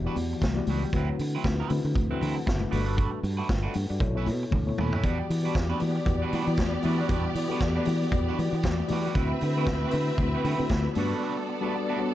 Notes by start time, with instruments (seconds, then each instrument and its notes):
Already playing: reed electric piano E3 B3 F#4 G4 C#5 D5 E5
0.05 reed electric piano E3 B3 F#4 G4 D5, clean electric guitar G3 D4 F#4 B4
0.16 fingered electric bass E2, muted clean electric guitar stroke, open hi-hat, muted conga
0.33 muted clean electric guitar stroke
0.42 fingered electric bass C2, kick, snare, closed hi-hat, high conga
0.56 reed electric piano E3 B3 F#4 G4 D5, muted clean electric guitar stroke, high conga
0.67 fingered electric bass C#2, clean electric guitar G3 D4 F#4 B4, open hi-hat, high conga
0.84 muted clean electric guitar stroke
0.93 fingered electric bass D2, reed electric piano D3 A3 C4 E4 F#4 B4, clean electric guitar F#3 C4 E4, kick, closed hi-hat, muted conga
0.97 clean electric guitar B4
1.10 muted clean electric guitar stroke
1.19 fingered electric bass D3, muted clean electric guitar stroke, open hi-hat
1.35 clean electric guitar F#3 C4 E4 B4
1.44 fingered electric bass D2, reed electric piano D3 A3 C4 E4 F#4 B4, kick, snare, closed hi-hat, high conga
1.60 clean electric guitar F#3 C4 E4 B4
1.70 reed electric piano D3 A3 C4 E4 F#4 B4, fingered electric bass D3, muted clean electric guitar stroke, open hi-hat, muted conga
1.85 fingered electric bass D3, muted clean electric guitar stroke
1.95 fingered electric bass D2, muted clean electric guitar stroke, kick, closed hi-hat, muted conga, low conga
2.10 reed electric piano D3 A3 C4 E4 F#4 B4, clean electric guitar F#3 C4 E4 B4
2.20 fingered electric bass D3, clean electric guitar F#3 C4 E4 B4, reed electric piano A5, open hi-hat, muted conga, low conga
2.35 reed electric piano A4 F#5, muted clean electric guitar stroke
2.46 fingered electric bass F#1, reed electric piano E5, muted clean electric guitar stroke, kick, snare, closed hi-hat, high conga
2.60 reed electric piano D4 B4, muted clean electric guitar stroke, high conga
2.71 fingered electric bass G1, reed electric piano G3 D4 F#4 A4 B4, clean electric guitar A3 D4 F#4 B4, open hi-hat, high conga
2.86 clean electric guitar A3 D4 F#4 B4
2.97 clean electric guitar A3 D4 F#4 B4, kick, closed hi-hat, muted conga
3.11 muted clean electric guitar stroke
3.23 fingered electric bass G2, muted clean electric guitar stroke, open hi-hat
3.37 clean electric guitar A3 D4 F#4 B4
3.49 fingered electric bass G1, reed electric piano B4 G5, muted clean electric guitar stroke, kick, snare, closed hi-hat, high conga
3.63 clean electric guitar A3 D4 F#4 B4, reed electric piano A4 F#5
3.74 fingered electric bass G2, muted clean electric guitar stroke, open hi-hat, muted conga
3.89 fingered electric bass G2, reed electric piano F#4 D5, muted clean electric guitar stroke
4.00 fingered electric bass B1, reed electric piano B2 B3 E4 A4 C#5, muted clean electric guitar stroke, kick, closed hi-hat, muted conga
4.14 reed electric piano B2 B3 E4 A4 C#5, clean electric guitar C#4 E4 B4
4.19 clean electric guitar A3
4.26 fingered electric bass B2, muted clean electric guitar stroke, open hi-hat, muted conga
4.43 muted clean electric guitar stroke
4.51 fingered electric bass D2, muted clean electric guitar stroke, kick, high tom, high conga
4.65 reed electric piano B2 B3 E4 A4 C#5, muted clean electric guitar stroke, high conga
4.78 fingered electric bass D#2, clean electric guitar A3 C#4 E4 B4, mid tom, high conga
4.93 clean electric guitar A3 C#4 E4 B4, floor tom
5.03 fingered electric bass E2, reed electric piano E3 B3 F#4 G4 D5, clean electric guitar G3 D4 F#4 B4, string section B3 G4 D5, kick, closed hi-hat, muted conga
5.20 muted clean electric guitar stroke
5.30 fingered electric bass E3, muted clean electric guitar stroke, open hi-hat
5.42 reed electric piano E3 B3 F#4 G4 D5, clean electric guitar F#4 B4
5.46 clean electric guitar G3 D4
5.55 fingered electric bass E2, muted clean electric guitar stroke, kick, snare, closed hi-hat, high conga
5.69 clean electric guitar G3 D4 F#4 B4
5.79 reed electric piano E3 B3 F#4 G4 D5, fingered electric bass E3, open hi-hat, muted conga
5.96 muted clean electric guitar stroke
6.05 fingered electric bass E2, reed electric piano E3 B3 F#4 G4 D5, muted clean electric guitar stroke, kick, closed hi-hat, muted conga, low conga
6.22 clean electric guitar G3 D4 F#4 B4
6.33 fingered electric bass E3, clean electric guitar G3 D4 F#4 B4, open hi-hat, muted conga
6.45 reed electric piano E3 B3 F#4 G4 D5, fingered electric bass E3, muted clean electric guitar stroke
6.57 fingered electric bass E2, muted clean electric guitar stroke, kick, snare, closed hi-hat, high conga
6.73 muted clean electric guitar stroke
6.82 reed electric piano E3 B3 F#4 G4 E5, fingered electric bass E3, clean electric guitar G3 D4 F#4 B4, open hi-hat, high conga
7.00 clean electric guitar G3 D4 F#4 B4
7.08 fingered electric bass E2, reed electric piano E3 B3 F#4 G4 D5, clean electric guitar G3 D4 F#4 B4, kick, closed hi-hat, muted conga
7.26 muted clean electric guitar stroke
7.35 fingered electric bass E3, muted clean electric guitar stroke, open hi-hat
7.48 reed electric piano E3 B3 F#4 G4 A4, clean electric guitar B4
7.52 clean electric guitar G3 D4 F#4
7.61 fingered electric bass E2, muted clean electric guitar stroke, kick, snare, closed hi-hat, high conga
7.76 clean electric guitar G3 D4 F#4 B4
7.85 reed electric piano E3 B3 F#4 G4 D5, fingered electric bass E3, muted clean electric guitar stroke, open hi-hat, muted conga
8.02 muted clean electric guitar stroke
8.11 fingered electric bass E2, reed electric piano E3 B3 F#4 G4 D5, muted clean electric guitar stroke, kick, closed hi-hat, muted conga, low conga
8.28 clean electric guitar G3 D4 F#4 B4
8.39 fingered electric bass E3, muted clean electric guitar stroke, open hi-hat, muted conga
8.51 reed electric piano E3 B3 F#4 G4 D5, fingered electric bass E3, muted clean electric guitar stroke
8.63 fingered electric bass E2, muted clean electric guitar stroke, kick, snare, closed hi-hat, high conga
8.79 muted clean electric guitar stroke
8.88 reed electric piano E3 B3 F#4 G4 D5, fingered electric bass E3, clean electric guitar G3 D4 F#4, open hi-hat, high conga
8.93 clean electric guitar B4
9.06 clean electric guitar G3 D4 F#4 B4
9.15 fingered electric bass D2, reed electric piano D3 A3 C4 E4 F#4 B4, string section C4 B4 E5, clean electric guitar C4 E4 F#4 B4, kick, closed hi-hat
9.32 muted clean electric guitar stroke
9.41 fingered electric bass D3, muted clean electric guitar stroke, open hi-hat
9.56 reed electric piano D3 A3 C4 E4 F#4 B4, clean electric guitar C4 E4 F#4 B4
9.67 fingered electric bass D2, muted clean electric guitar stroke, kick, snare, closed hi-hat, high conga
9.84 clean electric guitar C4 E4 F#4 B4
9.91 reed electric piano D3 A3 C4 E4 F#4 B4, fingered electric bass D3, open hi-hat, muted conga
9.96 muted clean electric guitar stroke
10.11 muted clean electric guitar stroke
10.18 fingered electric bass D2, reed electric piano D3 A3 C4 E4 F#4 B4, kick, muted conga, low conga
10.22 muted clean electric guitar stroke
10.35 clean electric guitar C4 E4 F#4 B4
10.45 fingered electric bass D3, clean electric guitar C4 E4 F#4 B4, open hi-hat, muted conga
10.57 reed electric piano D3 A3 C4 E4 F#4 B4, fingered electric bass D3, muted clean electric guitar stroke
10.69 fingered electric bass D2, muted clean electric guitar stroke, kick, snare, closed hi-hat, high conga
10.86 muted clean electric guitar stroke
10.95 fingered electric bass G2, reed electric piano G3 D4 F#4 A4 B4, clean electric guitar A3 D4 F#4, string section B3 A4 D5, open hi-hat, high conga
10.99 clean electric guitar B4
11.12 clean electric guitar A3 D4 F#4 B4
11.23 clean electric guitar A3 D4 F#4 B4
11.37 muted clean electric guitar stroke
11.49 muted clean electric guitar stroke
11.61 reed electric piano G3 D4 F#4 A4 B4, clean electric guitar A3 D4 F#4 B4
11.75 muted clean electric guitar stroke
11.89 clean electric guitar A3 D4 F#4 B4
11.98 reed electric piano G3 D4 F#4 A4 C#5, muted clean electric guitar stroke